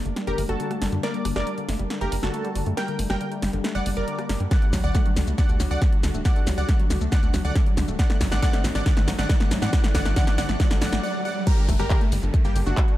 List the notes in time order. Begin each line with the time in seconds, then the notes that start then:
Already playing: G3 A#3 D4
0.06 G1 A3, closed hi-hat
0.16 G3, snare, closed hi-hat
0.27 G1 D3 G4 A#4 A#5, closed hi-hat
0.38 G1 A3, open hi-hat
0.49 G1 G3 F#4 A4 A5, closed hi-hat
0.60 D3, closed hi-hat
0.71 A3, cross-stick, closed hi-hat
0.82 G1 G3, snare, open hi-hat
0.92 G2 D3, closed hi-hat
1.03 A3 A#4 D5 D6, snare, closed hi-hat
1.14 G3, closed hi-hat
1.25 G1 D3, cross-stick, open hi-hat
1.36 G1 A3 A#4 D5 D6, cross-stick, snare, closed hi-hat
1.47 G3, closed hi-hat
1.58 D3, closed hi-hat
1.69 G1 A3, snare, open hi-hat
1.79 G1 G3, closed hi-hat
1.90 D3, snare, closed hi-hat
2.01 G1 A3 G4 A#4 A#5, closed hi-hat
2.12 G1 G3, open hi-hat
2.23 G1 D3 F#4 A4 A5, snare, closed hi-hat
2.34 A3, closed hi-hat
2.45 G3, closed hi-hat
2.55 G1 D3, open hi-hat
2.66 G2 A3, closed hi-hat
2.77 G3 A#4 G5 G6, snare, closed hi-hat
2.88 D3, closed hi-hat
2.99 G1 A3, open hi-hat
3.10 G1 G3 A#4 G5 G6, cross-stick, snare, closed hi-hat
3.21 D3, closed hi-hat
3.32 A3, closed hi-hat
3.42 G1 G3, snare, open hi-hat
3.53 G1 D3, closed hi-hat
3.64 A3, snare, closed hi-hat
3.75 G1 G3 D5 F#5 F#6, closed hi-hat
3.86 G1 G3, open hi-hat
3.97 G1 G3 A#4 D5 D6, closed hi-hat
4.08 D3, closed hi-hat
4.19 A#3, cross-stick, closed hi-hat
4.29 G1 A#3, snare, open hi-hat
4.40 G2 G3, closed hi-hat
4.51 D3 D4 F#4 D5 F#5 F#6, kick, snare, closed hi-hat, riser, shaker
4.62 A3, closed hi-hat
4.73 D2 F#3, kick, snare, open hi-hat, shaker
4.84 D2 D3 D5 F#5 F#6, closed hi-hat, shaker
4.95 A3, kick, snare, closed hi-hat, shaker
5.06 F#3, closed hi-hat
5.16 D2 D3, snare, open hi-hat, shaker
5.27 D2 A3, closed hi-hat, shaker
5.38 D3 D5 F#5 F#6, kick, snare, closed hi-hat, shaker
5.49 D2 A3, closed hi-hat, shaker
5.60 D2 F#3, snare, open hi-hat, shaker
5.71 D2 D3 D5 F#5 F#6, closed hi-hat, shaker
5.82 A3, kick, snare, closed hi-hat, shaker
5.93 F#3, closed hi-hat
6.03 D2 D3, snare, open hi-hat, shaker
6.14 D1 A3, closed hi-hat, shaker
6.25 D3 D5 F#5 F#6, kick, snare, closed hi-hat, shaker
6.36 A3, closed hi-hat
6.47 D2 F#3, snare, open hi-hat, shaker
6.58 D2 D3 D5 F#5 F#6, closed hi-hat, shaker
6.69 A3, kick, snare, closed hi-hat, shaker
6.79 F#3, closed hi-hat
6.90 D2 D3, snare, open hi-hat, shaker
7.01 D2 A3, closed hi-hat, shaker
7.12 D3 D5 F#5 F#6, kick, snare, closed hi-hat, shaker
7.23 D2 A3, closed hi-hat, shaker
7.34 D2 F#3, snare, open hi-hat, shaker
7.45 D2 D3 D5 F#5 F#6, closed hi-hat, shaker
7.56 A3, kick, snare, closed hi-hat, shaker
7.66 F#3, closed hi-hat
7.77 D2 D3, snare, open hi-hat, shaker
7.88 D1 A3, closed hi-hat, shaker
7.99 D3 A3 C4 D#4 D5 F#5 F#6, kick, snare, closed hi-hat, shaker
8.10 A3, snare, closed hi-hat
8.21 A1 F#3, kick, snare, open hi-hat, shaker
8.32 A1 D3 D5 F#5 F#6, snare, closed hi-hat, shaker
8.42 D3 D5 F#5 F#6, kick, snare, closed hi-hat, shaker
8.53 A3, snare, closed hi-hat
8.64 A1 F#3, snare, open hi-hat, shaker
8.75 A1 D3 D5 F#5 F#6, snare, closed hi-hat, shaker
8.86 D3 D5 F#5 F#6, kick, snare, closed hi-hat, shaker
8.97 A1 A3, snare, closed hi-hat, shaker
9.08 A1 F#3, snare, open hi-hat, shaker
9.19 A1 D3 D5 F#5 F#6, snare, closed hi-hat, shaker
9.29 D3 D5 F#5 F#6, kick, snare, closed hi-hat, shaker
9.40 A3, snare, closed hi-hat
9.51 A1 F#3, snare, open hi-hat, shaker
9.62 A2 D3 D5 F#5 F#6, snare, closed hi-hat, shaker
9.73 D5 F#5 F#6, kick, snare, closed hi-hat, shaker
9.84 A3, snare, closed hi-hat, shaker
9.95 A1 D3 D5 F#5 F#6, kick, snare, open hi-hat, shaker
10.05 A1 A3, snare, closed hi-hat, shaker
10.16 D3 D5 F#5 F#6, kick, snare, closed hi-hat, shaker
10.27 A3, snare, closed hi-hat, shaker
10.38 A1 D3 D5 F#5 F#6, snare, open hi-hat, shaker
10.49 A1 A3, snare, closed hi-hat, shaker
10.60 D3 D5 F#5 F#6, kick, snare, closed hi-hat, shaker
10.71 A1 A3, snare, closed hi-hat, shaker
10.82 A1 D3 D5 F#5 F#6, snare, open hi-hat, shaker
10.93 A1 A3, snare, closed hi-hat, shaker
11.03 D5 F#5
11.25 D5 F#5
11.47 G3 A3 A#3 G4 A#4 A#5, kick, closed hi-hat, crash, downlifter, shaker
11.58 D3, closed hi-hat
11.69 G1 A3, kick, cross-stick, open hi-hat, shaker
11.79 G1 G3 G4 A#4 A#5, cross-stick, closed hi-hat, shaker
11.90 D3, kick, clap, closed hi-hat, shaker
12.01 A3, closed hi-hat
12.12 G1 G3, open hi-hat, shaker
12.23 G1 D3, closed hi-hat, shaker
12.34 A3, kick, closed hi-hat, shaker
12.45 G1 G3 A#3 G4 G5, closed hi-hat, shaker
12.56 G1 D3, open hi-hat, shaker
12.66 G1 A3 D4 F#4 F#5, closed hi-hat, shaker
12.77 G3, kick, clap, closed hi-hat, shaker
12.88 D3, closed hi-hat